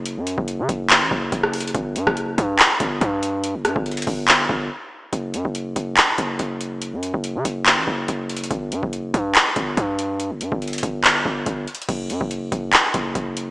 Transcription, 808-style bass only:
\new Staff \with { instrumentName = "808-style bass" } { \clef bass \time 4/4 \key g \lydian \tempo 4 = 142 fis,,16 fis,8 fis,,8 cis16 fis,,8. a,,16 fis,,8 fis,,4 | g,,8 g,16 fis,,8. g,8 r8 g,,8 g,4~ | g,16 fis,,16 g,16 g,,8. g,,4 g,,8 r4 | fis,,8 fis,16 fis,,8. fis,,8 r8 fis,,8 fis,,4~ |
fis,,16 fis,8 fis,,8 cis16 fis,,8. a,,16 fis,,8 fis,,4 | g,,8 g,16 fis,,8. g,8 r8 g,,8 g,4~ | g,16 fis,,16 g,16 g,,8. g,,4 g,,8 g,,8 r8 | fis,,8 fis,16 fis,,8. fis,,8 r8 fis,,8 fis,,4 | }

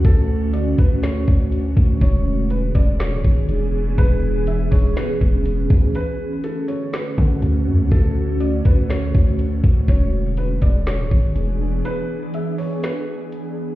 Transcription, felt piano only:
\new Staff \with { instrumentName = "Felt piano" } { \time 4/4 \key e \mixolydian \tempo 4 = 122 a'4 d''8 b'8 cis''2 | cis''4 b'8 d''8 cis''2 | b'4 e''8 cis''8 b'4 r4 | b'4 a'8 cis''8 b'2 |
a'4 d''8 b'8 cis''2 | cis''4 b'8 d''8 cis''2 | b'4 e''8 cis''8 b'4 r4 | }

